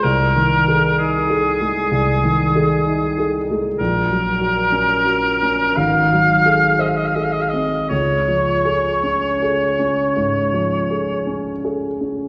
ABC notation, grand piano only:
X:1
M:4/4
L:1/8
Q:1/4=58
K:Db
V:1 name="Grand piano"
(3C,, E, A (3E A A, (3C,, E, A (3E A A, | (3B,,, G, G (3D G D (3A,,, G, A (3c A C | (3D,, F, A (3D A D (3A,, F, A (3D A D |]